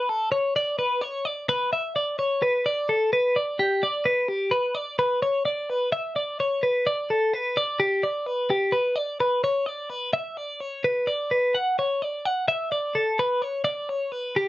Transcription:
0.09 0.31 A4 medium
0.32 0.55 C#5 medium
0.56 0.78 D5 medium
0.79 1.02 B4 medium
1.02 1.25 C#5 medium
1.25 1.49 D5 medium
1.49 1.72 B4 medium
1.73 1.96 E5 medium
1.96 2.19 D5 medium
2.19 2.42 C#5 medium
2.42 2.66 B4 medium
2.66 2.89 D5 medium
2.89 3.12 A4 medium
3.13 3.36 B4 medium
3.36 3.59 D5 medium
3.59 3.83 G4 medium
3.83 4.06 D5 medium
4.05 4.28 B4 medium
4.28 4.52 G4 medium
4.51 4.75 B4 medium
4.75 4.99 D5 medium
4.99 5.22 B4 medium
5.22 5.45 C#5 medium
5.45 5.70 D5 medium
5.70 5.92 B4 medium
5.92 6.16 E5 medium
6.16 6.39 D5 medium
6.40 6.63 C#5 medium
6.63 6.86 B4 medium
6.87 7.10 D5 medium
7.10 7.33 A4 medium
7.33 7.57 B4 medium
7.57 7.80 D5 medium
7.80 8.03 G4 medium
8.03 8.26 D5 medium
8.26 8.50 B4 medium
8.50 8.74 G4 medium
8.72 8.96 B4 medium
8.96 9.20 D5 medium
9.20 9.43 B4 medium
9.44 9.66 C#5 medium
9.66 9.90 D5 medium
9.90 10.13 B4 medium
10.13 10.37 E5 medium
10.37 10.61 D5 medium
10.61 10.84 C#5 medium
10.84 11.08 B4 medium
11.07 11.31 D5 medium
11.31 11.55 B4 medium
11.55 11.78 F#5 medium
11.79 12.02 C#5 medium
12.02 12.26 D5 medium
12.26 12.48 F#5 medium
12.48 12.71 E5 medium
12.72 12.96 D5 medium
12.95 13.19 A4 medium
13.19 13.42 B4 medium
13.42 13.64 C#5 medium
13.64 13.89 D5 medium
13.89 14.12 C#5 medium
14.12 14.37 B4 medium
14.36 14.48 G4 medium

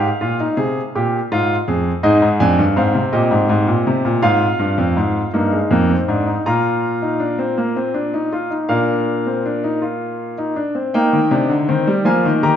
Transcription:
0.00 2.01 F5 medium
0.21 0.44 A#2 medium
0.21 0.39 F4 medium
0.40 0.57 D#4 medium
0.57 0.80 C3 medium
0.57 0.80 G#4 medium
0.95 1.18 A#2 medium
0.95 1.18 G4 medium
1.32 1.54 G#2 medium
1.32 1.54 F4 medium
1.68 1.91 F2 medium
1.68 1.91 G#4 medium
2.03 2.20 G#2 medium
2.03 2.27 D#4 medium
2.03 3.10 G#4 medium
2.03 2.26 D#5 medium
2.22 2.40 G#2 medium
2.40 2.58 F2 medium
2.40 2.63 D4 medium
2.40 2.63 G#5 medium
2.58 2.76 G2 medium
2.76 2.94 G#2 medium
2.76 5.30 C4 medium
2.76 2.99 F5 medium
2.94 3.13 C3 medium
3.13 3.31 A#2 medium
3.13 4.20 G4 medium
3.13 4.20 D#5 medium
3.31 3.48 G#2 medium
3.49 3.67 G#2 medium
3.67 3.86 A#2 medium
3.87 4.05 C3 medium
4.05 4.23 A#2 medium
4.22 4.46 G#2 medium
4.22 5.30 F4 medium
4.22 6.42 F5 medium
4.59 4.78 G2 medium
4.78 4.96 F2 medium
4.97 5.20 G#2 medium
5.34 5.57 G2 medium
5.34 5.52 A#3 medium
5.34 6.25 D#4 medium
5.52 5.70 G#3 medium
5.71 5.94 F2 medium
5.71 5.89 A#3 medium
5.89 6.08 C4 medium
6.08 6.32 G#2 medium
6.08 6.27 D4 medium
6.27 6.45 D#4 medium
6.46 8.66 A#2 medium
6.46 8.31 F4 medium
6.46 8.67 A#5 medium
7.02 7.20 D#4 medium
7.20 7.38 D4 medium
7.39 7.57 C4 medium
7.58 7.76 A#3 medium
7.76 7.95 C4 medium
7.94 8.13 D4 medium
8.14 8.32 D#4 medium
8.33 8.51 F4 medium
8.51 8.69 D#4 medium
8.69 10.53 A#2 medium
8.69 9.24 D4 medium
8.69 10.53 A#4 medium
8.69 10.53 F5 medium
9.27 9.45 C4 medium
9.46 9.64 D4 medium
9.64 9.82 D#4 medium
9.82 10.37 F4 medium
10.38 10.57 D#4 medium
10.56 10.75 D4 medium
10.75 10.94 C4 medium
10.94 11.18 A#3 medium
10.94 12.03 D#4 medium
10.94 12.03 G5 medium
11.13 11.31 D#3 medium
11.31 11.50 C3 medium
11.31 11.54 D4 medium
11.49 11.68 D3 medium
11.69 11.87 D#3 medium
11.69 11.92 C4 medium
11.87 12.06 G3 medium
12.05 12.24 F3 medium
12.05 12.56 A#3 medium
12.05 12.28 F4 medium
12.05 12.29 G#5 medium
12.25 12.42 D#3 medium
12.43 12.56 D#3 medium
12.43 12.56 G4 medium
12.43 12.56 A#5 medium

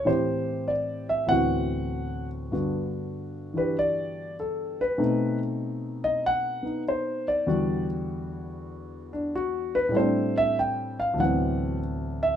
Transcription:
0.05 1.26 A2 medium
0.05 1.27 E3 soft
0.05 1.29 C4 medium
0.05 1.29 G4 medium
0.05 0.70 C5 medium
0.68 1.06 D5 medium
1.09 1.30 E5 medium
1.26 2.51 D2 soft
1.26 2.51 A2 soft
1.26 2.52 E3 soft
1.26 2.51 B3 soft
1.26 2.53 C4 soft
1.26 2.27 F#5 loud
1.32 2.52 F#4 medium
2.52 4.99 G2 medium
2.52 4.99 D3 soft
2.52 4.99 B3 soft
2.52 5.00 F#4 medium
3.54 4.98 E3 soft
3.54 4.99 D4 soft
3.54 5.00 G4 soft
3.54 3.76 B4 medium
3.79 4.35 D5 medium
4.40 4.78 A4 medium
4.81 5.38 B4 medium
4.98 7.46 B2 medium
4.98 7.46 A3 soft
4.98 7.46 C4 soft
4.98 6.64 D#4 medium
6.04 6.23 D#5 medium
6.26 6.82 F#5 loud
6.63 7.46 B3 soft
6.63 7.47 D#4 soft
6.88 7.27 C5 medium
7.28 7.85 D5 medium
7.47 9.94 E2 medium
7.47 9.94 D3 soft
7.47 9.90 G3 medium
7.47 9.34 F#4 medium
9.13 9.32 D4 medium
9.35 9.74 F#4 medium
9.75 9.94 B4 medium
9.89 11.14 A2 medium
9.89 11.17 G3 medium
9.94 11.18 A3 medium
9.94 11.20 C4 medium
9.94 10.36 C5 medium
10.00 11.21 D4 medium
10.37 10.57 E5 medium
10.59 10.98 G5 medium
11.00 11.19 F5 medium
11.14 12.36 D2 medium
11.14 12.36 A2 soft
11.18 12.36 E3 soft
11.18 12.36 F#3 soft
11.18 12.36 B3 soft
11.18 11.77 F#5 medium
11.25 12.36 C4 medium
12.23 12.36 E5 medium

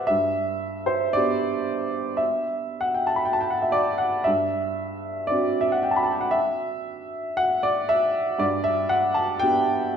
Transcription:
0.00 0.12 B4 medium
0.00 0.12 C5 medium
0.00 0.12 D5 medium
0.00 0.07 E5 medium
0.00 0.13 F#5 medium
0.07 1.13 G2 medium
0.07 0.88 E5 medium
0.86 1.14 C5 medium
1.13 4.23 B3 medium
1.13 4.23 D4 soft
1.13 4.24 G4 medium
1.13 2.19 D5 loud
2.17 2.82 E5 medium
2.81 2.98 F#5 medium
2.94 3.09 G5 medium
3.07 3.19 A5 medium
3.16 3.27 B5 medium
3.25 3.35 G5 medium
3.33 3.43 A5 medium
3.40 3.52 G5 medium
3.50 3.63 F#5 medium
3.62 3.75 E5 medium
3.72 4.00 D5 medium
3.98 4.25 F#5 medium
4.24 5.27 G2 medium
4.24 5.29 E5 medium
5.27 8.38 C4 soft
5.27 8.39 D4 soft
5.27 8.39 F#4 medium
5.27 5.60 D5 medium
5.61 5.75 E5 medium
5.72 5.84 F#5 medium
5.83 5.93 G5 medium
5.91 6.00 A5 medium
5.96 6.06 B5 medium
6.04 6.14 A5 medium
6.12 6.23 G5 medium
6.21 6.33 F#5 medium
6.31 7.38 E5 medium
7.37 7.65 F#5 loud
7.63 7.90 D5 medium
7.89 8.41 E5 loud
8.39 9.38 G2 medium
8.39 8.66 D5 medium
8.64 8.91 E5 loud
8.89 9.16 F#5 loud
9.14 9.41 A5 medium
9.39 9.97 B3 medium
9.39 9.97 D4 soft
9.39 9.97 G4 medium
9.39 9.97 G5 loud

